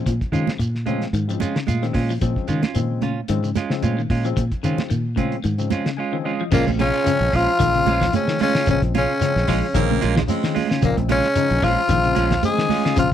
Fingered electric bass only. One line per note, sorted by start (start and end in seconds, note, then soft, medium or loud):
0.07 0.19 A#2 medium
0.32 0.45 D#3 medium
0.59 1.05 A#2 medium
1.13 1.36 G#2 loud
1.68 1.91 A#2 medium
1.95 2.17 A#2 medium
2.22 2.34 A#2 medium
2.49 2.62 D#3 medium
2.76 3.21 A#2 medium
3.29 3.52 G#2 loud
3.83 4.06 A#2 medium
4.10 4.33 A#2 loud
4.37 4.50 A#2 medium
4.64 4.77 D#3 medium
4.91 5.37 A#2 medium
5.45 5.68 G#2 loud
6.52 6.65 A#1 medium
6.67 6.90 A#1 medium
7.20 7.31 A#1 medium
7.33 7.46 A#1 medium
7.60 7.83 A#1 loud
7.86 8.09 A#1 medium
8.67 8.80 A#1 loud
8.82 9.05 A#1 medium
9.36 9.46 A#1 medium
9.48 9.61 A#1 loud
9.75 9.97 A#1 loud
10.04 10.26 A#1 medium
10.83 10.95 A#1 medium
10.98 11.20 A#1 medium
11.51 11.61 A#1 loud
11.63 11.75 A#1 loud
11.89 12.12 A#1 loud
12.17 12.39 A#1 medium
12.97 13.10 A#1 medium